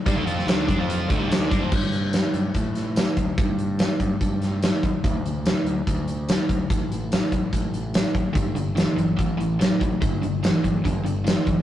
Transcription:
<<
  \new Staff \with { instrumentName = "Overdriven electric guitar" } { \clef bass \time 4/4 \key d \major \tempo 4 = 145 <g d'>16 <d a>16 <f c' f'>8 <d a d'>8 <g d'>16 <f c' f'>8. <d a>16 <c g>16 <d a d'>8 <g d'>16 <f c'>16 | r1 | r1 | r1 |
r1 | <g, d>8 <g, d>8 <g, e>8 <g, e>8 <a, e>8 <a, e>8 <a, fis>8 <a, fis>8 | <g, d>8 <g, d>8 <g, e>8 <g, e>8 <g, d>8 <g, d>8 <g, e>8 <g, e>8 | }
  \new Staff \with { instrumentName = "Fingered electric bass" } { \clef bass \time 4/4 \key d \major g,16 d,16 f,8 d,8 g,16 f,8. d,16 c,16 d,8 g,16 f,16 | g,4. g,8 a,4. d,8 | g,4. g,8 g,4. dis,16 r16 | d,4. d,8 d,4. d,8 |
a,,4. a,,8 a,,4. a,,16 r16 | g,,4. g,,8 a,,4. a,,8 | g,,4. g,,8 g,,4. g,,16 r16 | }
  \new DrumStaff \with { instrumentName = "Drums" } \drummode { \time 4/4 <hh bd>8 hh16 sn16 <hh sn tamb>8 <hh bd>8 hh8 <hh bd>8 <hh sn tamb>8 <hh bd>8 | <cymc bd>8 hh8 <hh sn tamb>8 hh8 <hh bd>8 <hh sn>8 <hh sn tamb>8 <hh bd>8 | <hh bd>8 hh8 <hh sn tamb>8 <hh bd>8 <hh bd>8 <hh sn>8 <hh sn tamb>8 <hh bd>8 | <hh bd>8 hh8 <hh sn tamb>8 hh8 <hh bd>8 hh8 <hh sn tamb>8 <hh bd>8 |
<hh bd>8 hh8 <hh sn tamb>8 <hh bd>8 <hh bd>8 hh8 <hh sn tamb>8 <hh bd>8 | <hh bd>8 hh8 <hh sn tamb>8 hh8 <hh bd>8 hh8 <hh sn tamb>8 <hh bd>8 | <hh bd>8 hh8 <hh sn tamb>8 <hh bd>8 <hh bd>8 hh8 <hh sn tamb>8 <hh bd>8 | }
>>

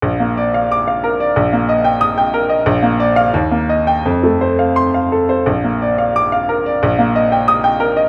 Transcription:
\new Staff \with { instrumentName = "Grand piano" } { \time 2/4 \key bes \major \tempo 4 = 90 << { r4 d'''8 r8 | r4 ees'''8 r8 | r8. f''16 r8. g''16 | r4 c'''8 r8 |
r4 d'''8 r8 | r4 ees'''8 r8 | } \\ { bes,,16 bes16 d''16 f''8 f''16 bes'16 d''16 | bes,,16 bes16 ees''16 g''8 g''16 bes'16 ees''16 | bes,,16 bes16 d''8 ees,16 bes16 ees''8 | f,16 a16 c''16 f''8 f''16 a'16 c''16 |
bes,,16 bes16 d''16 f''8 f''16 bes'16 d''16 | bes,,16 bes16 ees''16 g''8 g''16 bes'16 ees''16 | } >> }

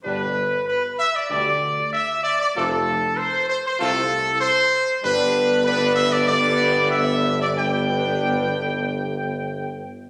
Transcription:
<<
  \new Staff \with { instrumentName = "Trumpet section" } { \time 4/4 \key g \major \tempo 4 = 96 b'4 b'8 e''16 d''16 d''4 e''8 d''16 d''16 | a'4 c''8 c''16 c''16 a'4 c''4 | b'4 b'8 e''16 d''16 d''4 e''8. d''16 | g''2.~ g''8 r8 | }
  \new Staff \with { instrumentName = "French horn section" } { \time 4/4 \key g \major <g d'>8 r4. <g d'>8 r4. | <c' f'>8 r4. <c' f'>8 r4. | <b d'>4 <b d'>4 <b d'>2 | <b d'>2.~ <b d'>8 r8 | }
  \new Staff \with { instrumentName = "Trombone section" } { \clef bass \time 4/4 \key g \major <b, g>8 r4. <b, g>8 r4. | <c a>8 r4. <c a>8 r4. | <g, g>4 <g, g>4 <g, g>2 | <g, g>2.~ <g, g>8 r8 | }
  \new Staff \with { instrumentName = "Tuba" } { \clef bass \time 4/4 \key g \major g,,4 r4 d,4 r4 | f,,4 r4 c,4 r4 | g,,1~ | g,,2.~ g,,8 r8 | }
>>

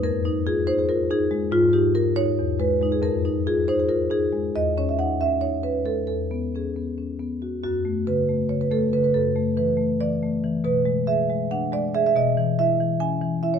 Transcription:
<<
  \new Staff \with { instrumentName = "Marimba" } { \time 7/8 \key e \major \tempo 4 = 140 ais'4 aes'8 c''16 aes'16 ais'8 aes'4 | eis'8 g'8 ais'8 cis''4 b'8. gis'16 | ais'4 aes'8 c''16 aes'16 ais'8 aes'4 | dis''8 cis''16 e''16 fis''8 e''8 cis''8 b'8 a'8 |
a'4 gis'4 r4. | fis'4 b'4 cis''16 b'16 a'8 b'16 b'16 | a'4 b'4 d''4. | b'4 e''4 fis''8 d''8 e''16 e''16 |
dis''4 e''4 gis''4 e''16 cis''16 | }
  \new Staff \with { instrumentName = "Marimba" } { \time 7/8 \key e \major f,8 ees'8 f'8 ees'8 f'8 ees'8 aes8 | gis,8 dis'8 eis'8 dis'8 e,8 gis8 <gis dis'>8 | f,8 ees'8 f'8 ees'8 f'8 ees'8 aes8 | e,8 cis'8 dis'8 cis'8 dis'8 cis'8 gis8 |
e,8 b8 cis'8 b8 cis'8 b8 fis'8 | fis,8 a8 cis8 a8 cis8 a8 cis8 | fis,8 a8 e8 a8 e8 a8 e8 | b,8 gis8 gis'8 gis8 d'8 gis8 gis'8 |
b,8 e8 e'8 e8 cis'8 e8 e'8 | }
>>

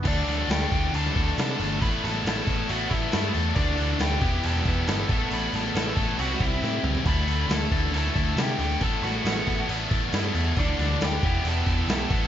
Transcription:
<<
  \new Staff \with { instrumentName = "Lead electric guitar" } { \time 4/4 \key d \mixolydian \tempo 4 = 137 <d' d''>4 <g' g''>4 <a' a''>4 <a' a''>4 | <b' b''>8 <a' a''>8 <a' a''>4 <fis' fis''>8 <e' e''>4 r8 | <d' d''>4 <g' g''>4 <a' a''>4 <a' a''>4 | <b' b''>8 <a' a''>8 <a' a''>4 <fis' fis''>8 <e' e''>4 r8 |
<b' b''>4 <a' a''>4 <a' a''>4 <g' g''>4 | <a' a''>8 <fis' fis''>4. r2 | <d' d''>4 <g' g''>4 <a' a''>4 <a' a''>4 | }
  \new Staff \with { instrumentName = "Distorted electric guitar" } { \time 4/4 \key d \mixolydian <d e a d' a'>8 <a d' a'>8 <e a d' a'>8 <d e a d' a'>8 <e a d' a'>8 <d e a d' a'>8 <e a d' a'>8 <a d' a'>8 | <a b e' a'>8 <b e' a'>8 <a b e' a'>8 <a b e' a'>8 <a b e' a'>8 <a b e' a'>8 <a b e' a'>8 <b e' a'>8 | <d e a d' a'>8 <a d' a'>8 <e a d' a'>8 <e b e' g'>8 <e b e' g'>8 <e b e' g'>8 <e b e' g'>8 <a b e' a'>8 | <a b e' a'>8 <b e' a'>8 <a b e' a'>8 <a b e' a'>8 <c g c' e' g'>8 <c g c' e' g'>8 <g c' e' g'>8 <c' e' g'>8 |
<d e a e' a'>8 <a e' a'>8 <e a e' a'>8 <d e a e' a'>8 <e a e' a'>8 <d e a e' a'>8 <e a e' a'>8 <a e' a'>8 | <a b e' a'>8 <b e' a'>8 <a b e' a'>8 <a b e' a'>8 <a b e' a'>8 <a b e' a'>8 <a b e' a'>8 <b e' a'>8 | <d e a d' a'>8 <a d' a'>8 <e a d' a'>8 <e b e' g'>8 <e b e' g'>8 <e b e' g'>8 <e b e' g'>8 <a b e' a'>8 | }
  \new Staff \with { instrumentName = "Distorted electric guitar" } { \time 4/4 \key d \mixolydian <d e a d' a'>2 <d e a d' a'>2 | <a b e' a'>2 <a b e' a'>2 | <d e a d' a'>4. <e b e' g'>2 <a b e' a'>8~ | <a b e' a'>4. <a b e' a'>8 <c g c' e' g'>2 |
<d e a e' a'>2 <d e a e' a'>2 | <a b e' a'>2 <a b e' a'>2 | <d e a d' a'>4. <e b e' g'>2 <a b e' a'>8 | }
  \new Staff \with { instrumentName = "Picked electric bass" } { \clef bass \time 4/4 \key d \mixolydian d,8 d,8 d,8 d,8 d,8 d,8 c8 g,,8 | a,,8 a,,8 a,,8 a,,8 a,,8 a,,8 g,8 e,8 | d,8 d,8 d,8 e,,8 e,,8 e,,8 g,,8 a,,8 | a,,8 a,,8 a,,8 a,,8 c,8 c,8 a,8 cis,8 |
d,8 d,8 d,8 d,8 d,8 d,8 c8 d,8 | a,,8 a,,8 a,,8 a,,8 a,,8 a,,8 g,8 e,8 | d,8 d,8 d,8 e,,8 e,,8 e,,8 b,,8 a,,8 | }
  \new DrumStaff \with { instrumentName = "Drums" } \drummode { \time 4/4 <cymc bd>8 <cymc sn>8 <cymc sn>8 <cymc bd>8 cymc16 sn16 <cymc bd>8 <cymc sn>8 cymc8 | <cymc bd>8 <cymc sn>8 <cymc sn>8 <cymc bd>8 cymc8 <cymc bd>8 <cymc sn>8 cymc8 | <cymc bd>8 cymc8 <cymc sn>8 <cymc bd>8 cymc16 sn16 <cymc bd>8 <cymc sn>8 <cymc bd>8 | cymc8 <cymc sn>8 <cymc sn>8 <cymc bd>8 cymc16 sn16 <cymc bd>8 sn8 toml16 tomfh16 |
<cymc bd>8 cymc8 <cymc sn>8 <cymc bd>8 cymc16 sn16 <cymc bd>8 <cymc sn>8 cymc8 | <cymc bd>8 <cymc sn>8 <cymc sn>8 <cymc bd>8 cymc8 <cymc bd>8 <cymc sn>8 cymc8 | <cymc bd>8 <cymc sn>8 <cymc sn>8 <cymc bd>8 cymc8 <cymc bd>8 <cymc sn>8 <cymc bd>8 | }
>>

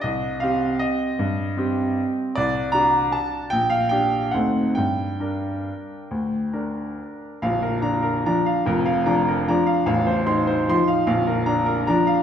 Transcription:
\new Staff \with { instrumentName = "Grand piano" } { \time 3/4 \key g \minor \tempo 4 = 149 << { ees''4 f''4 ees''4~ | ees''2~ ees''8 r8 | d''4 bes''4 a''4 | g''8 f''8 g''4 fis''4 |
g''2.~ | g''2~ g''8 r8 | \key bes \major f''8 bes'8 bes''8 bes'8 bes''8 f''8 | bes'8 f''8 bes''8 bes'8 bes''8 f''8 |
f''8 c''8 c'''8 c''8 c'''8 f''8 | f''8 bes'8 bes''8 bes'8 bes''8 f''8 | } \\ { c,4 <c' g'>2 | g,4 <c' g'>2 | c,4 <d' fis'>2 | bes,,4 <d' g'>4 <d, c' ees' a'>4 |
g,4 <d' bes'>2 | d,4 <d' bes'>2 | <bes,,, bes,,>4 d'4 <f d'>4 | <f,, f,>4 <f d'>4 <f d'>4 |
<a,,, a,,>4 ees'4 <f ees'>4 | <bes,,, bes,,>4 d'4 <f d'>4 | } >> }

